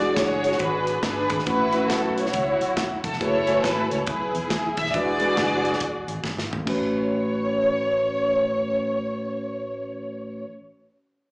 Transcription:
Already playing: fingered electric bass E1, tine electric piano E3, string section F#4 G#4 D5
0.01 tine electric piano G#3 D4 E4 F#4 G#4
0.16 fingered electric bass F#1, string section F#4 G#4 C#5, kick, snare, closed hi-hat
0.44 closed hi-hat
0.52 snare
0.59 fingered electric bass G#1, string section D4 G#4 B4, kick, closed hi-hat
0.87 closed hi-hat
1.03 fingered electric bass G1, string section D4 G#4 B4, kick, snare, closed hi-hat
1.30 fingered electric bass G#1, kick, closed hi-hat
1.39 snare
1.46 fingered electric bass A1, tine electric piano A2 A3 C#4 E4 F#4 B4, string section E4 F#4 B4, kick, closed hi-hat
1.72 tine electric piano A3 C#4 E4 F#4 B4, closed hi-hat
1.89 fingered electric bass B1, string section A4, kick, snare, closed hi-hat
2.16 string section E4 F#4 C#5, closed hi-hat
2.26 snare
2.33 fingered electric bass C#2, kick, closed hi-hat
2.59 fingered electric bass B1, closed hi-hat
2.77 fingered electric bass E1, kick, snare, closed hi-hat
3.04 fingered electric bass F1, string section A4, kick, closed hi-hat
3.13 snare
3.20 fingered electric bass F#1, tine electric piano A3 E4 F#4 G#4 B4, string section E4 A4 C#5, kick, closed hi-hat
3.47 tine electric piano A3 E4 F#4 A4 G#5, closed hi-hat
3.54 tine electric piano B4
3.63 fingered electric bass G#1, string section B4, kick, snare, closed hi-hat
3.90 fingered electric bass C#2, string section C#5, closed hi-hat
4.07 fingered electric bass B1, string section E4 G#4 B4, kick, closed hi-hat
4.35 fingered electric bass E2, closed hi-hat
4.50 fingered electric bass E1, kick, snare, closed hi-hat
4.77 fingered electric bass D#1, string section E5, kick, closed hi-hat
4.86 snare
4.94 fingered electric bass E1, tine electric piano E3 G#3 D4 E4 F#4 B4, string section F#4 G#4 D5, kick, closed hi-hat
5.20 tine electric piano G#3 D4 E4 F#4 B4, closed hi-hat
5.37 fingered electric bass F#1, kick, snare, closed hi-hat
5.65 closed hi-hat
5.73 snare
5.80 fingered electric bass E1, kick, closed hi-hat
6.08 fingered electric bass G#1, closed hi-hat
6.24 fingered electric bass G1, kick, snare
6.38 snare
6.51 fingered electric bass G#1, floor tom
6.65 tine electric piano A1 A3 C#4 F#4, fingered electric bass A1, string section C#5, kick, china
6.69 tine electric piano B4

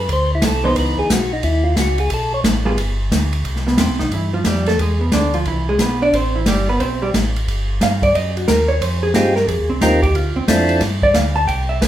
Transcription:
0.09 tonewheel organ D2 C5, kick, ride
0.35 tonewheel organ E4
0.42 tonewheel organ C2 A4, kick, snare, hi-hat pedal, ride
0.64 hollow-body jazz guitar E3 B3 D#4, tonewheel organ C5
0.75 tonewheel organ C#2 B4, kick, ride
0.97 tonewheel organ C#2 G#4
1.09 tonewheel organ B1 F#4, kick, snare, hi-hat pedal, ride
1.33 tonewheel organ D#4
1.43 tonewheel organ D#2 E4, kick, ride
1.64 tonewheel organ F4
1.76 tonewheel organ C#2 F#4, kick, snare, hi-hat pedal, ride
1.98 tonewheel organ G#4, ride
2.10 tonewheel organ B1 A4, kick, ride
2.34 tonewheel organ C#5
2.43 tonewheel organ A1, kick, snare, hi-hat pedal, ride
2.65 hollow-body jazz guitar G3 B3 F4 G#4
2.77 tonewheel organ G1, kick, ride
3.11 tonewheel organ D2, kick, snare, hi-hat pedal, ride
3.33 ride
3.44 tonewheel organ C2, kick, ride
3.56 snare
3.67 hollow-body jazz guitar B2 B3, snare
3.78 tonewheel organ E2, hollow-body jazz guitar C3 C4, kick, snare, hi-hat pedal, ride
3.89 tonewheel organ C2
3.99 tonewheel organ B1, hollow-body jazz guitar D#3 D#4, snare
4.11 tonewheel organ G2, hollow-body jazz guitar E3 E4, kick, ride
4.33 hollow-body jazz guitar F3 F4
4.44 tonewheel organ F2, hollow-body jazz guitar G3 G4, kick, snare, hi-hat pedal, ride
4.55 snare
4.66 hollow-body jazz guitar A3 A4, snare, ride
4.78 tonewheel organ E2, hollow-body jazz guitar G#3 G#4, kick, ride
5.01 hollow-body jazz guitar B2 B3
5.12 tonewheel organ D2, hollow-body jazz guitar D3 D4, kick, snare, hi-hat pedal, ride
5.34 hollow-body jazz guitar F3 F4, ride
5.45 tonewheel organ C2, hollow-body jazz guitar E3 E4, kick, ride
5.69 hollow-body jazz guitar G#3 G#4
5.79 tonewheel organ B1, hollow-body jazz guitar B3 B4, kick, snare, hi-hat pedal, ride
6.02 hollow-body jazz guitar D4 D5
6.12 tonewheel organ A1, hollow-body jazz guitar C4 C5, kick, ride
6.36 hollow-body jazz guitar E3 E4
6.45 tonewheel organ G1, hollow-body jazz guitar G3 G4, kick, snare, hi-hat pedal, ride
6.69 hollow-body jazz guitar B3 B4
6.80 tonewheel organ B1, hollow-body jazz guitar C4 C5, kick, ride
7.02 hollow-body jazz guitar G3 G4
7.13 tonewheel organ A1, kick, snare, hi-hat pedal, ride
7.36 ride
7.47 tonewheel organ G1, kick, ride
7.80 tonewheel organ G2, hollow-body jazz guitar F5, kick, snare, hi-hat pedal, ride
8.02 hollow-body jazz guitar D5, kick, ride
8.14 tonewheel organ F#2, hollow-body jazz guitar D#5, kick, ride
8.37 hollow-body jazz guitar F#4, ride
8.48 tonewheel organ D#2, hollow-body jazz guitar A#4, kick, snare, hi-hat pedal, ride
8.68 hollow-body jazz guitar C#5
8.81 tonewheel organ F2, hollow-body jazz guitar C5, kick, ride
9.03 hollow-body jazz guitar G#4
9.14 tonewheel organ G2 C4 D#4 F4 G4 G#4, hollow-body jazz guitar G4, kick, snare, hi-hat pedal, ride
9.36 hollow-body jazz guitar A#4, snare
9.48 tonewheel organ F2, hollow-body jazz guitar G#4, kick, ride
9.59 tonewheel organ D#2
9.70 tonewheel organ C2, hollow-body jazz guitar C4
9.81 tonewheel organ D#2 C4 D#4 F4 G4 A#4, hollow-body jazz guitar D#4, kick, snare, hi-hat pedal, ride
10.02 hollow-body jazz guitar G4, kick, ride
10.14 tonewheel organ D2, hollow-body jazz guitar F4, kick, ride
10.35 tonewheel organ D2, hollow-body jazz guitar C4
10.47 tonewheel organ F2 C4 D4 E4 F4 A4, kick, snare, hi-hat pedal, ride
10.69 ride
10.80 tonewheel organ G2, kick, snare, ride
11.02 hollow-body jazz guitar D5, kick
11.14 tonewheel organ D2, hollow-body jazz guitar F5, kick, snare, hi-hat pedal, ride
11.36 hollow-body jazz guitar A5
11.47 tonewheel organ C2, hollow-body jazz guitar G5, kick, ride
11.69 hollow-body jazz guitar E5
11.82 tonewheel organ B1, hollow-body jazz guitar B4, kick, snare, hi-hat pedal, ride

